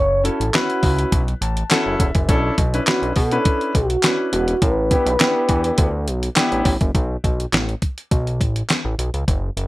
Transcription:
0.00 0.30 F#1 loud
0.00 0.22 C#5 loud
0.24 0.41 C#4 medium
0.24 0.42 E4 medium
0.24 0.42 F#4 medium
0.24 0.42 A4 medium
0.24 0.55 A4 loud
0.24 closed hi-hat medium
0.40 0.51 A1 medium
0.40 closed hi-hat medium
0.54 1.19 C#4 loud
0.54 1.19 E4 medium
0.54 1.12 F#4 medium
0.54 1.19 F#4 medium
0.54 1.20 B4 loud
0.54 snare loud
0.54 clap medium
0.54 closed hi-hat medium
0.70 closed hi-hat soft
0.83 1.05 C#2 loud
0.83 kick loud
0.83 open hi-hat medium
0.99 closed hi-hat medium
1.12 1.34 B1 loud
1.12 kick loud
1.12 closed hi-hat medium
1.28 closed hi-hat soft
1.41 1.64 A1 loud
1.41 1.69 A5 medium
1.41 closed hi-hat medium
1.57 closed hi-hat medium
1.70 2.03 C#4 loud
1.70 2.03 E4 loud
1.70 2.03 F#4 loud
1.70 2.03 A4 loud
1.70 1.98 F#5 medium
1.70 snare loud
1.70 clap loud
1.70 closed hi-hat loud
1.86 1.96 F#1 loud
1.99 2.11 E1 loud
1.99 2.27 E5 medium
1.99 kick medium
1.99 closed hi-hat medium
2.15 2.30 F#1 medium
2.15 kick loud
2.15 closed hi-hat medium
2.28 2.51 B1 loud
2.28 2.53 C#4 loud
2.28 2.54 D4 medium
2.28 2.54 E4 loud
2.28 2.54 A4 loud
2.28 kick loud
2.28 closed hi-hat medium
2.58 2.80 B1 loud
2.58 kick loud
2.58 closed hi-hat medium
2.74 2.81 C#4 medium
2.74 2.81 D4 medium
2.74 2.81 E4 medium
2.74 2.82 B4 medium
2.74 closed hi-hat medium
2.87 3.12 C#4 medium
2.87 3.12 D4 medium
2.87 3.12 E4 medium
2.87 3.01 F#4 medium
2.87 3.12 B4 medium
2.87 snare loud
2.87 clap medium
2.87 closed hi-hat medium
3.02 3.13 B1 loud
3.02 closed hi-hat soft
3.16 3.38 B2 loud
3.16 3.71 A4 loud
3.16 kick medium
3.16 open hi-hat medium
3.31 3.72 C#4 medium
3.31 3.72 D4 medium
3.31 3.72 E4 medium
3.31 3.72 B4 loud
3.31 closed hi-hat medium
3.45 kick loud
3.45 closed hi-hat medium
3.61 closed hi-hat soft
3.75 3.97 B1 loud
3.75 4.29 F#4 loud
3.75 kick medium
3.75 closed hi-hat medium
3.90 closed hi-hat medium
4.03 4.53 C#4 medium
4.03 4.53 D4 medium
4.03 4.53 E4 medium
4.03 4.53 B4 medium
4.03 snare loud
4.03 clap loud
4.03 closed hi-hat loud
4.33 4.55 E1 loud
4.33 4.60 F#4 medium
4.33 closed hi-hat medium
4.48 closed hi-hat medium
4.62 4.96 A1 loud
4.62 6.33 B4 loud
4.62 kick loud
4.62 closed hi-hat medium
4.91 5.08 B3 medium
4.91 5.08 D4 medium
4.91 5.08 E4 medium
4.91 5.08 G4 medium
4.91 kick loud
4.91 closed hi-hat medium
5.06 5.17 B1 medium
5.06 closed hi-hat medium
5.20 5.85 B3 medium
5.20 5.27 C#4 medium
5.20 5.86 E4 medium
5.20 5.86 G4 loud
5.20 snare loud
5.20 clap medium
5.20 closed hi-hat medium
5.27 5.89 D4 medium
5.49 5.71 E2 loud
5.49 kick loud
5.49 closed hi-hat medium
5.64 closed hi-hat medium
5.78 6.09 D2 loud
5.78 kick loud
5.78 closed hi-hat medium
6.07 6.30 B1 medium
6.07 closed hi-hat medium
6.23 closed hi-hat medium
6.36 6.69 B3 loud
6.36 6.69 D4 medium
6.36 6.69 E4 loud
6.36 6.69 G4 loud
6.36 snare loud
6.36 clap loud
6.36 closed hi-hat loud
6.52 6.62 A1 medium
6.52 closed hi-hat soft
6.65 6.77 A1 loud
6.65 kick medium
6.65 open hi-hat medium
6.81 6.91 F#1 medium
6.81 kick medium
6.81 closed hi-hat medium
6.95 7.17 B1 loud
6.95 kick loud
6.95 closed hi-hat medium
7.24 7.46 B1 medium
7.24 kick medium
7.24 closed hi-hat medium
7.40 closed hi-hat medium
7.53 7.75 A1 medium
7.53 snare loud
7.53 clap medium
7.53 closed hi-hat medium
7.69 closed hi-hat soft
7.82 kick medium
7.82 closed hi-hat medium
7.98 closed hi-hat soft
8.11 8.42 B1 medium
8.11 kick loud
8.11 closed hi-hat medium
8.27 closed hi-hat soft
8.40 8.63 A1 medium
8.40 kick medium
8.40 closed hi-hat medium
8.56 closed hi-hat medium
8.70 snare loud
8.70 clap medium
8.70 closed hi-hat medium
8.85 8.95 A1 medium
8.99 9.10 B1 medium
8.99 closed hi-hat medium
9.14 9.24 C#2 medium
9.14 closed hi-hat soft
9.28 9.50 F#1 loud
9.28 kick loud
9.28 closed hi-hat medium
9.57 9.67 F#1 loud
9.57 closed hi-hat medium

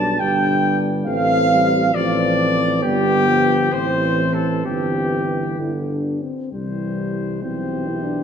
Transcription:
0.00 0.21 B1 medium
0.00 0.16 G3 medium
0.00 0.16 D4 medium
0.00 0.18 A5 medium
0.00 0.21 A5 medium
0.19 1.06 G1 medium
0.19 1.08 G3 medium
0.19 1.05 D4 medium
0.19 0.78 G5 medium
0.19 0.80 G5 medium
1.06 1.93 A1 medium
1.06 1.52 A3 medium
1.06 1.93 C4 medium
1.06 1.91 F5 medium
1.06 1.96 F5 loud
1.50 1.96 G3 medium
1.94 2.85 A1 medium
1.94 2.82 F3 medium
1.94 2.84 C4 medium
1.94 2.85 D5 medium
1.94 2.82 D5 loud
2.83 3.72 G1 medium
2.83 3.29 G3 medium
2.83 3.71 B3 medium
2.83 3.74 G4 loud
2.83 3.72 G4 medium
3.27 3.74 F3 medium
3.72 4.66 A1 medium
3.72 4.64 E3 medium
3.72 4.63 C4 medium
3.72 4.35 C5 medium
4.34 4.65 A4 medium
4.34 4.67 A4 medium
4.65 5.58 G1 medium
4.65 5.61 E3 medium
4.65 5.41 C4 medium
4.65 5.57 G4 medium
4.65 5.59 G4 medium
5.58 6.20 G1 medium
5.58 6.22 D3 medium
5.58 5.73 E4 medium
5.91 6.24 D4 soft
6.22 6.52 C4 soft
6.52 7.44 C2 soft
6.52 7.39 E3 soft
6.52 7.44 G3 medium
6.52 7.39 C5 soft
7.42 8.23 B1 soft
7.42 8.23 E3 soft
7.42 7.90 C4 soft
7.42 8.23 G4 soft
7.42 8.23 C5 soft
7.88 8.05 E4 soft
8.03 8.23 D4 soft

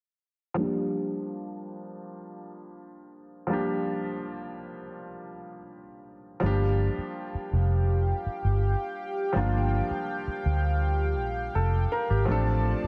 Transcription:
0.54 3.44 F3 medium
0.54 3.45 G3 medium
0.54 3.46 A#3 medium
0.59 3.47 D4 medium
0.59 3.48 G4 medium
3.47 6.37 F3 medium
3.47 6.38 G3 medium
3.47 6.39 A#3 medium
3.52 6.39 D4 medium
3.52 6.40 G4 medium
6.40 6.87 G1 loud
6.40 9.30 F3 medium
6.40 9.31 G3 medium
6.40 9.31 A#3 medium
6.40 12.24 G4 medium
6.40 12.24 F5 medium
6.40 12.24 G5 medium
6.44 9.32 D4 medium
6.44 9.33 G4 medium
6.98 muted fingered electric bass stroke soft
7.35 muted fingered electric bass stroke soft
7.53 8.12 F1 medium
8.26 muted fingered electric bass stroke soft
8.44 8.74 G1 medium
9.33 9.80 G1 medium
9.33 12.23 F3 medium
9.33 12.23 G3 medium
9.33 12.24 A#3 medium
9.37 12.25 D4 medium
9.37 12.26 F4 medium
9.91 muted fingered electric bass stroke soft
10.27 muted fingered electric bass stroke soft
10.46 11.19 D2 medium
11.19 11.48 A#1 medium
11.55 11.85 F1 medium
11.55 11.90 A4 medium
11.92 12.09 A#4 medium
12.10 12.25 G#1 medium
12.10 12.45 G4 medium
12.25 12.73 A1 loud
12.25 12.87 F3 medium
12.25 12.87 A3 medium
12.25 12.87 C4 medium
12.25 12.87 F4 medium
12.25 12.87 D5 medium
12.25 12.87 A5 medium
12.30 12.87 D4 medium
12.30 12.87 A4 medium
12.84 muted fingered electric bass stroke soft

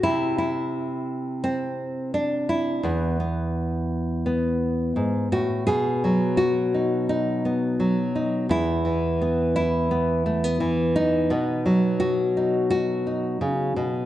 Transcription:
0.03 2.80 C3 medium
0.03 0.37 E4 loud
0.38 2.14 E4 medium
1.44 2.14 C4 medium
2.14 2.84 D4 medium
2.49 5.32 E4 medium
2.83 4.96 E2 medium
2.83 3.19 B3 soft
3.20 4.25 B3 soft
4.26 5.63 B3 soft
4.96 5.32 G#2 medium
5.32 5.67 A2 medium
5.32 5.66 F#4 medium
5.67 8.50 B2 medium
5.67 6.37 G#4 loud
6.04 7.78 F#3 medium
6.37 7.79 F#4 medium
6.74 7.08 D#4 soft
7.09 8.14 D#4 medium
7.45 9.21 B3 soft
7.80 8.46 F#3 medium
8.15 8.46 D#4 soft
8.49 11.30 E2 medium
8.49 9.55 E4 loud
8.85 10.59 E3 medium
9.21 9.90 B3 soft
9.56 11.31 E4 medium
9.91 10.25 B3 soft
10.26 10.44 A3 soft
10.44 11.30 B3 soft
10.60 11.30 E3 medium
10.96 12.36 D#4 medium
11.30 13.41 B2 medium
11.30 14.05 B3 medium
11.66 14.05 F#3 medium
12.00 12.69 F#4 medium
12.37 13.05 D#4 soft
12.70 14.05 F#4 medium
13.07 14.05 D#4 soft
13.41 13.76 C#3 medium
13.76 14.05 B2 medium

